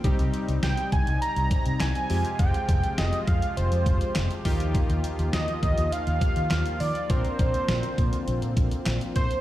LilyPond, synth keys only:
\new Staff \with { instrumentName = "Synth keys" } { \time 4/4 \key ees \major \tempo 4 = 102 <g c' ees' g'>2.~ <g c' ees' g'>8 <aes c' f' g'>8~ | <aes c' f' g'>2.~ <aes c' f' g'>8 <bes ees' f' g'>8~ | <bes ees' f' g'>2.~ <bes ees' f' g'>8 r8 | <c' d' f' bes'>1 | }